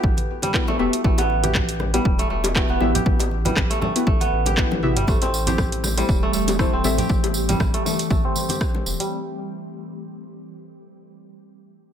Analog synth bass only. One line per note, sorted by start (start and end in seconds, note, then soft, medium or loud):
0.03 0.13 A1 loud
0.79 0.89 E1 medium
1.04 1.99 A1 loud
2.05 2.23 E1 loud
2.30 2.62 E1 loud
2.69 2.77 E1 medium
2.81 2.99 A1 loud
3.06 3.51 A1 loud
3.57 3.66 A1 medium
4.07 4.16 A1 loud
4.32 4.98 A1 medium
4.97 5.04 G1 loud
5.08 6.03 A1 medium
6.09 6.27 E1 loud
6.34 6.66 E1 loud
6.73 6.81 E1 medium
6.84 7.02 A1 loud
7.10 7.54 A1 medium
7.60 7.69 A1 medium
8.11 8.20 A1 medium
8.86 8.95 E1 medium